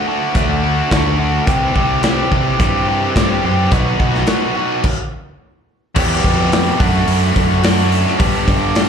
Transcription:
0.07 0.33 D3 medium
0.07 0.34 A3 medium
0.07 0.35 D4 medium
0.07 0.35 F#4 loud
0.34 0.81 D2 medium
0.34 0.62 D3 medium
0.34 0.62 A3 loud
0.34 0.62 D4 medium
0.34 0.63 F#4 medium
0.34 kick loud
0.34 closed hi-hat medium
0.63 0.89 D3 medium
0.63 0.90 A3 medium
0.63 0.90 D4 medium
0.63 0.91 F#4 loud
0.91 1.38 D2 loud
0.91 1.16 D3 medium
0.91 1.17 A3 medium
0.91 1.18 D4 loud
0.91 1.18 F#4 loud
0.91 kick medium
0.91 snare loud
0.91 closed hi-hat medium
1.17 1.45 D3 medium
1.17 1.46 A3 medium
1.17 1.46 D4 loud
1.17 1.46 F#4 loud
1.46 1.71 C2 loud
1.46 1.72 C3 medium
1.46 1.73 E3 loud
1.46 1.74 G3 loud
1.46 1.74 C4 loud
1.46 1.75 G4 loud
1.46 kick loud
1.46 closed hi-hat medium
1.74 2.22 C2 medium
1.74 2.01 C3 medium
1.74 2.02 E3 medium
1.74 2.03 G3 loud
1.74 2.03 C4 medium
1.74 2.03 G4 loud
1.74 kick medium
2.03 2.29 C3 loud
2.03 2.30 E3 medium
2.03 2.31 G3 loud
2.03 2.32 C4 loud
2.03 2.32 G4 loud
2.03 snare loud
2.03 closed hi-hat medium
2.30 2.59 C3 medium
2.30 2.55 C3 medium
2.30 2.59 E3 medium
2.30 2.59 G3 medium
2.30 2.60 C4 medium
2.30 2.60 G4 medium
2.30 kick medium
2.59 3.05 G2 medium
2.59 2.87 C3 medium
2.59 2.87 E3 medium
2.59 2.87 G3 loud
2.59 2.88 C4 loud
2.59 2.88 G4 loud
2.59 kick loud
2.59 closed hi-hat medium
2.88 3.14 C3 medium
2.88 3.15 E3 medium
2.88 3.15 G3 loud
2.88 3.15 C4 loud
2.88 3.16 G4 loud
3.15 3.39 G2 medium
3.15 3.43 C3 medium
3.15 3.44 E3 medium
3.15 3.44 G3 loud
3.15 3.44 C4 medium
3.15 3.45 G4 loud
3.15 kick medium
3.15 snare loud
3.15 closed hi-hat medium
3.44 3.67 F#2 medium
3.44 3.70 C3 medium
3.44 3.71 E3 medium
3.44 3.71 G3 medium
3.44 3.71 C4 medium
3.44 3.71 G4 loud
3.71 3.95 B1 loud
3.71 3.97 B2 loud
3.71 3.98 F#3 loud
3.71 3.98 B3 loud
3.71 3.98 D#4 loud
3.71 3.99 F#4 loud
3.71 kick loud
3.71 closed hi-hat medium
3.98 4.23 B1 medium
3.98 4.26 B2 medium
3.98 4.26 F#3 medium
3.98 4.27 B3 medium
3.98 4.27 D#4 medium
3.98 4.28 F#4 loud
3.98 kick medium
4.15 snare soft
4.27 4.55 B2 loud
4.27 4.55 F#3 loud
4.27 4.55 B3 loud
4.27 4.56 D#4 loud
4.27 4.56 F#4 loud
4.27 snare loud
4.27 closed hi-hat medium
4.56 4.82 B2 medium
4.56 4.82 F#3 medium
4.56 4.82 B3 loud
4.56 4.83 D#4 loud
4.56 4.83 F#4 loud
4.84 kick loud
4.84 crash medium
5.95 6.78 E2 medium
5.95 6.19 E2 loud
5.95 6.78 B2 medium
5.95 6.78 E3 medium
5.95 6.79 G3 medium
5.95 6.79 B3 loud
5.95 6.79 G4 loud
5.95 kick loud
5.95 crash loud
6.24 6.70 F2 medium
6.24 kick medium
6.24 open hi-hat medium
6.52 snare loud
6.52 open hi-hat medium
6.80 7.03 F#2 medium
6.80 7.61 F#3 medium
6.80 7.62 A3 loud
6.80 7.63 D4 loud
6.80 7.63 F#4 loud
6.80 kick loud
6.80 open hi-hat medium
7.08 7.31 F#2 medium
7.08 open hi-hat medium
7.36 8.04 F#2 loud
7.36 kick medium
7.36 open hi-hat medium
7.63 8.17 F#3 medium
7.63 8.18 A3 medium
7.63 8.18 D4 medium
7.63 8.19 F#4 medium
7.63 snare loud
7.63 open hi-hat medium
7.92 open hi-hat medium
8.07 snare soft
8.17 8.89 G2 loud
8.17 8.31 G2 medium
8.17 8.89 D3 loud
8.17 8.89 G3 medium
8.17 8.89 B3 loud
8.17 8.89 D4 medium
8.17 8.89 G4 loud
8.17 kick loud
8.17 open hi-hat loud
8.48 8.89 G2 loud
8.48 kick medium
8.48 open hi-hat medium
8.75 snare loud
8.75 open hi-hat medium

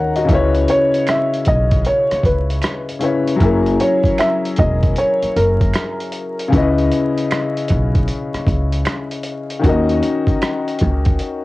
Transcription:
0.00 0.26 D#2 medium
0.00 0.23 D#3 medium
0.00 0.24 C#4 medium
0.00 0.15 A#4 medium
0.00 0.30 C#5 medium
0.00 0.14 F#5 medium
0.00 0.30 A#5 medium
0.16 0.53 F#4 medium
0.16 0.53 D#5 medium
0.16 closed hi-hat soft
0.25 2.96 C#3 medium
0.25 2.97 C#4 medium
0.25 kick loud
0.29 0.65 C#2 loud
0.29 2.98 E4 medium
0.29 2.99 B4 medium
0.29 closed hi-hat medium
0.34 3.00 C#5 medium
0.55 closed hi-hat soft
0.68 1.04 C#5 loud
0.68 closed hi-hat medium
0.94 closed hi-hat soft
1.07 1.47 E5 medium
1.07 finger snap medium
1.07 cross-stick loud
1.07 closed hi-hat medium
1.33 closed hi-hat soft
1.45 1.82 B1 medium
1.45 1.82 D#5 medium
1.45 kick medium
1.45 closed hi-hat medium
1.71 kick medium
1.71 closed hi-hat soft
1.85 2.21 C#5 medium
1.85 closed hi-hat medium
2.11 muted upright bass stroke soft
2.11 cross-stick soft
2.11 closed hi-hat soft
2.23 2.59 C#2 medium
2.23 2.85 B4 medium
2.23 kick medium
2.23 closed hi-hat medium
2.50 closed hi-hat medium
2.62 finger snap medium
2.62 cross-stick loud
2.62 closed hi-hat medium
2.89 closed hi-hat medium
2.99 3.39 C#3 medium
2.99 3.37 C#4 medium
2.99 3.39 E4 medium
2.99 3.41 B4 medium
2.99 closed hi-hat medium
3.04 3.42 C#5 medium
3.27 closed hi-hat medium
3.36 6.46 F#3 medium
3.36 6.47 C#4 medium
3.40 3.76 F#1 loud
3.40 6.48 E4 medium
3.40 6.49 G#4 medium
3.40 kick loud
3.40 closed hi-hat medium
3.45 6.50 A#4 loud
3.66 closed hi-hat soft
3.80 4.15 C#5 medium
3.80 closed hi-hat medium
4.04 kick medium
4.04 closed hi-hat soft
4.18 4.54 E5 medium
4.18 finger snap medium
4.18 cross-stick loud
4.18 closed hi-hat medium
4.45 closed hi-hat soft
4.56 4.94 E1 loud
4.56 4.93 D#5 medium
4.56 kick medium
4.56 closed hi-hat medium
4.83 kick loud
4.83 closed hi-hat soft
4.96 5.33 C#5 medium
4.96 closed hi-hat medium
5.23 muted upright bass stroke soft
5.23 closed hi-hat soft
5.36 5.71 F#1 medium
5.36 6.49 A#4 medium
5.36 closed hi-hat medium
5.61 kick loud
5.61 closed hi-hat medium
5.73 finger snap medium
5.73 cross-stick loud
5.73 closed hi-hat medium
6.00 closed hi-hat soft
6.12 closed hi-hat medium
6.39 closed hi-hat medium
6.48 9.58 C#3 medium
6.48 9.59 C#4 medium
6.52 6.88 C#2 loud
6.52 9.60 E4 medium
6.52 9.61 B4 medium
6.52 kick loud
6.52 closed hi-hat medium
6.58 9.63 D#5 medium
6.78 closed hi-hat soft
6.92 closed hi-hat medium
7.18 closed hi-hat soft
7.31 finger snap medium
7.31 cross-stick loud
7.31 closed hi-hat medium
7.57 closed hi-hat soft
7.68 8.05 B1 medium
7.68 kick medium
7.68 closed hi-hat medium
7.95 kick medium
7.95 closed hi-hat soft
8.08 closed hi-hat medium
8.34 muted upright bass stroke medium
8.34 cross-stick soft
8.34 closed hi-hat soft
8.47 8.83 C#2 medium
8.47 kick medium
8.47 closed hi-hat medium
8.72 closed hi-hat medium
8.85 finger snap medium
8.85 cross-stick loud
8.85 closed hi-hat medium
9.11 closed hi-hat soft
9.23 closed hi-hat medium
9.50 closed hi-hat medium
9.59 11.45 D#3 medium
9.59 11.45 C#4 medium
9.64 9.99 D#2 loud
9.64 11.45 F#4 medium
9.64 11.45 A#4 medium
9.64 kick loud
9.64 closed hi-hat medium
9.69 11.45 D#5 loud
9.89 closed hi-hat soft
10.03 closed hi-hat medium
10.27 kick loud
10.27 closed hi-hat soft
10.42 finger snap medium
10.42 cross-stick loud
10.42 closed hi-hat medium
10.68 closed hi-hat soft
10.79 11.17 C#2 loud
10.79 kick medium
10.79 closed hi-hat medium
11.05 kick loud
11.05 closed hi-hat soft
11.19 closed hi-hat medium

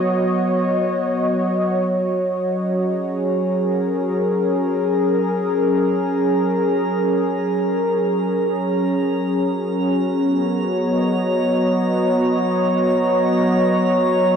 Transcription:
0.00 9.14 F#3 medium
0.00 1.87 B3 medium
0.00 4.77 F#4 medium
0.00 4.76 C#5 medium
0.00 3.19 D#5 medium
1.88 14.36 A#5 medium
2.48 10.48 C#4 medium
2.87 11.38 G#4 medium
3.43 11.19 A#4 medium
9.17 14.36 F#3 medium
9.46 14.36 F#4 medium
10.13 14.36 B3 medium
10.42 14.36 C#5 medium
10.80 14.36 D#5 medium

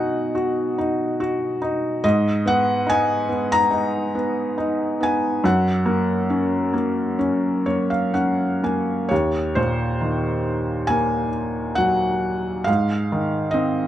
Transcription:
0.00 2.01 B2 medium
0.00 0.78 D#4 medium
0.00 0.33 F#4 medium
0.00 1.58 F#5 medium
0.00 2.06 G#5 medium
0.35 1.19 F#4 soft
0.78 1.60 D#4 medium
1.20 2.02 F#4 medium
1.62 2.03 D#4 medium
2.04 5.40 G#2 medium
2.04 2.43 D#5 medium
2.46 3.27 B3 medium
2.46 2.86 F#5 medium
2.87 3.69 D#4 medium
2.87 3.48 G#5 loud
3.29 4.13 B3 soft
3.52 4.98 A#5 loud
3.71 4.56 D#4 soft
4.15 4.99 B3 medium
4.58 5.41 D#4 medium
5.01 5.42 B3 soft
5.01 5.42 G#5 medium
5.44 9.07 F#2 medium
5.44 8.11 F#5 medium
5.86 6.72 A#3 medium
6.30 7.17 C#4 soft
6.74 7.64 A#3 soft
7.19 8.12 C#4 soft
7.66 8.62 A#3 soft
7.66 7.88 C#5 medium
7.90 8.13 F5 medium
8.14 9.08 C#4 soft
8.14 8.60 F#5 medium
8.63 9.10 A#3 soft
8.63 9.08 G#5 medium
9.09 12.64 D#2 medium
9.09 9.57 C#5 medium
9.55 11.29 A#2 soft
9.55 10.93 C5 medium
10.01 11.75 D#3 soft
10.87 12.64 A#3 soft
10.87 11.74 G#5 medium
11.75 12.65 F#3 soft
11.75 12.62 F#5 medium
12.64 13.87 G#2 medium
12.64 13.48 F5 medium
13.12 13.87 D#3 soft
13.51 13.87 C4 soft
13.51 13.87 D#5 medium

